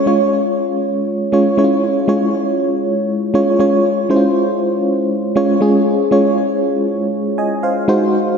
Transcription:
fm electric piano
0.06 G#3 C#4 F4 C#5
1.32 G#3 C#4 F4 C#5
1.57 G#3 C#4 E4 C#5
1.64 F4
2.08 G#3 C#4 F4 C#5
3.34 G#3 C#4 F4 C#5
3.59 G#3 C#4 F4 C#5
4.09 G#3 C#4 E4 C5
4.16 F4
5.36 G#3 C#4 F4 C#5
5.61 G#3 C#4 F4 G#4
6.11 G#3 C#4 F4 C#5
7.38 D#5 G#5
7.63 C5 F5
7.88 G#3 D#4 F#4 C5

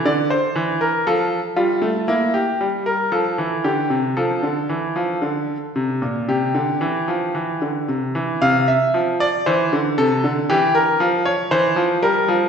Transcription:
grand piano
0.05 D3 D5
0.30 C5
0.56 E3
0.81 A#4
1.07 F3 A4
1.56 G3 F4
1.82 A3
2.08 A#3 E4
2.34 G4
2.61 G3
2.86 A#4
3.12 F3 A4
3.38 E3
3.64 D3 G4
3.90 C3
4.17 F3 A4
4.43 D3
4.69 E3
4.96 F3
5.22 D3
5.76 C3
6.02 A#2
6.28 C3 G4
6.54 D3
6.81 E3
7.08 F3
7.35 E3
7.62 D3
7.88 C3
8.15 E3
8.42 C3 F5
8.68 E5
8.94 F3
9.20 D5
9.46 E3 C5
9.73 D3
9.98 C3 A4
10.24 D3
10.50 E3 G4
10.75 A#4
11.00 F3
11.25 C#5
11.51 E3 C5
11.76 F3
12.02 G3 A#4
12.28 F3

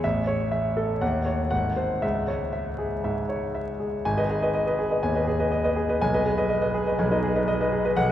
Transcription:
grand piano
0.04 A1 E5
0.27 C#5
0.51 E5
0.77 A4
1.01 D#2 F#5
1.25 C#5
1.51 G#1 F#5
1.76 C5
2.02 C#2 E5
2.28 C#5
2.53 E5
2.78 G#4
3.04 G#2 E5
3.29 C#5
3.55 E5
3.80 G#4
4.05 G#1 G#5
4.18 B4 D#5
4.30 G#4
4.42 B4 D#5
4.55 D#5
4.67 B4 D#5
4.79 G#4
4.91 B4 D#5
5.03 D#2 G#5
5.15 B4 D#5
5.27 G#4
5.39 B4 D#5
5.52 D#5
5.64 B4 D#5
5.76 G#4
5.89 B4 D#5
6.01 B1 G#5
6.14 B4 D#5
6.25 G#4
6.37 B4 D#5
6.49 D#5
6.61 B4 D#5
6.74 G#4
6.86 B4 D#5
6.99 B1 G#5
7.11 D#4 B4 D#5
7.24 G#4
7.36 B4 D#5
7.48 D#5
7.60 B4 D#5
7.72 G#4
7.84 B4 D#5
7.96 B1 F#5

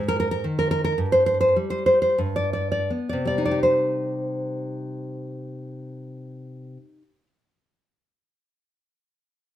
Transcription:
nylon-string guitar
Already playing: G#2
0.08 A#4
0.20 A#4
0.31 A#4
0.44 D#3
0.59 A#4
0.71 A#4
0.84 A#4
0.98 G2
1.12 C5
1.26 C5
1.41 C5
1.56 G3
1.70 C5
1.86 C5
2.02 C5
2.18 G2
2.36 D5
2.53 D5
2.72 D5
2.90 B3
3.09 C3 D5
3.25 G3 D5
3.38 D#4
3.46 D5
3.51 G4
3.63 C5

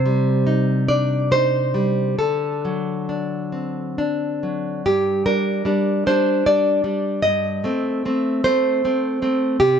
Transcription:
nylon-string guitar
Already playing: C3 C5
0.06 G3
0.47 D#4
0.88 D4 D5
1.31 D#4 C5
1.74 G3
2.19 D3 A4
2.65 F#3
3.09 D4
3.52 C4
3.98 D4
4.43 F#3
4.86 G2 G4
5.26 G3 D4 A#4
5.65 G3 D4
6.06 G3 D4 C5
6.46 G3 D4 D5
6.84 G3 D4
7.22 G2 D#5
7.64 A3 C4
8.05 A3 C4
8.44 A3 C4 C5
8.85 A3 C4
9.22 A3 C4
9.60 C3 G4

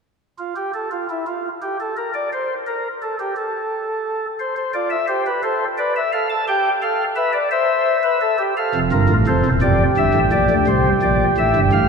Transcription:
pipe organ
0.38 F4
0.56 G4
0.74 A4
0.91 F4
1.10 E4
1.27 F4
1.62 G4
1.80 A4
1.97 A#4
2.14 D5
2.33 C5
2.67 A#4
3.02 A4
3.20 G4
3.36 A4
4.40 C5
4.56 C5
4.74 F4 D5
4.90 E5
5.08 G4 C5
5.26 B4
5.43 A4 C5
5.78 B4 D5
5.96 E5
6.13 A4 F5
6.30 A5
6.48 G4 G5
6.82 A4 F5
7.16 B4 E5
7.33 D5
7.51 C5 E5
8.03 B4
8.21 A4
8.38 G4
8.57 A4 F5
8.74 F1 F2
8.92 G1 G2 F4 A#4
9.09 A1 A2
9.27 F1 F2 A4 C5
9.45 E1 E2
9.62 F1 F2 G4 D5
9.97 G1 G2 E5
10.14 A1 A2
10.32 A#1 A#2 D5
10.50 D2 D3
10.67 C2 C3 C5
11.02 A#1 A#2 D5
11.38 A1 A2 E5
11.56 G1 G2
11.73 A1 A2 F5

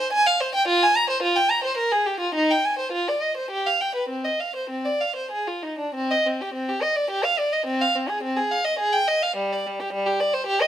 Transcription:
violin
0.00 C5
0.12 G#5
0.26 F5
0.41 C5
0.55 G5
0.67 F4
0.82 G#5
0.96 A#5
1.10 C5
1.22 F4
1.36 G5
1.50 A#5
1.64 C5
1.77 A#4
1.92 G#4
2.06 G4
2.20 F4
2.35 D#4
2.51 G5
2.65 G#5
2.79 C5
2.92 F4
3.08 D5
3.22 D#5
3.37 C5
3.50 G4
3.66 F5
3.81 G5
3.95 B4
4.09 C4
4.25 D#5
4.40 F5
4.56 C5
4.70 C4
4.85 D5
5.01 F5
5.16 C5
5.31 G#4
5.47 F4
5.62 D#4
5.79 D4
5.95 C4
6.11 D#5
6.26 C4
6.41 G4
6.54 C4
6.69 G4
6.82 D#5
6.95 D5
7.10 G4
7.24 F5
7.39 D5
7.52 D#5
7.66 C4
7.81 F5
7.95 C4
8.09 G#4
8.23 C4
8.36 G#4
8.51 F5
8.65 D#5
8.79 G#4
8.93 G5
9.08 D#5
9.22 F5
9.36 G3
9.52 D5
9.66 G3
9.80 G4
9.93 G3
10.06 G4
10.20 D5
10.34 C5
10.47 G4
10.61 D#5

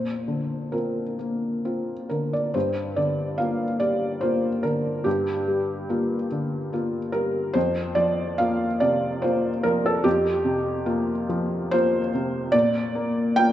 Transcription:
felt piano
Already playing: A#2 C5
0.28 D3
0.72 C4 F4 A#4
1.19 A#3
1.65 C4 F4
2.09 D3 A#4
2.33 D5
2.54 G2 C5
2.96 D3 D5
3.38 A#3 F4 F5
3.80 G3 D5
4.21 A#3 F4 C5
4.63 D3 A#4
5.04 G2 G4
5.48 G3
5.89 A#3 F4
6.32 D3
6.73 A#3 F4
7.12 G3 A#4
7.53 F2 C5
7.95 F3 D5
8.38 A#3 F4 F5
8.80 C3 D5
9.22 A#3 F4 C5
9.63 F3 A#4
9.86 A4
10.04 F2 G4
10.45 C3
10.86 A#3 F4
11.29 F3
11.71 A#3 F4 C5
12.15 C3
12.52 A#2 D5
12.95 A#3
13.36 A#3 F4 G5

